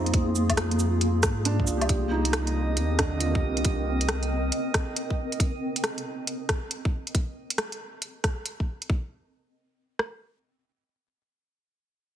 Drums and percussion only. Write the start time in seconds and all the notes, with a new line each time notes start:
0.06 closed hi-hat
0.14 kick, closed hi-hat
0.36 cabasa
0.50 kick, closed hi-hat, low woodblock
0.57 cross-stick, closed hi-hat
0.71 closed hi-hat
0.79 cabasa
1.01 closed hi-hat
1.23 kick, cross-stick, closed hi-hat, cabasa
1.45 closed hi-hat
1.60 kick
1.67 cabasa
1.81 closed hi-hat, low woodblock
1.89 kick, closed hi-hat
2.25 closed hi-hat
2.33 cross-stick, closed hi-hat
2.47 closed hi-hat
2.77 closed hi-hat
2.99 kick, cross-stick, closed hi-hat
3.20 closed hi-hat
3.35 kick
3.57 closed hi-hat
3.65 kick, closed hi-hat
4.01 closed hi-hat
4.09 cross-stick, closed hi-hat
4.23 closed hi-hat
4.52 closed hi-hat
4.74 kick, cross-stick, closed hi-hat
4.96 closed hi-hat
5.10 kick
5.32 closed hi-hat
5.40 kick, closed hi-hat
5.76 closed hi-hat
5.84 cross-stick, closed hi-hat
5.98 closed hi-hat
6.27 closed hi-hat
6.49 kick, cross-stick, closed hi-hat
6.71 closed hi-hat
6.85 kick
7.07 closed hi-hat
7.15 kick, closed hi-hat
7.50 closed hi-hat
7.58 cross-stick, closed hi-hat
7.72 closed hi-hat
8.02 closed hi-hat
8.24 kick, cross-stick, closed hi-hat
8.46 closed hi-hat
8.60 kick
8.82 closed hi-hat
8.90 kick
9.99 cross-stick